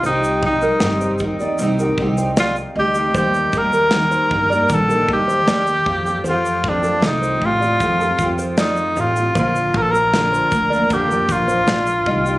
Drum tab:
SH |xx-xxxxxxx-xxx-x|xxxxxx-xxx-xxx-x|xx-xxx-xxxxxxxxx|xx-xxxxxxxxxxx-x|
SD |----o-------o---|----o-------o---|----o-------o---|----o-------o---|
BD |--o---o---o-----|o-o---o-o-o---o-|--o---o-o-o-----|o-o---o-o-o---o-|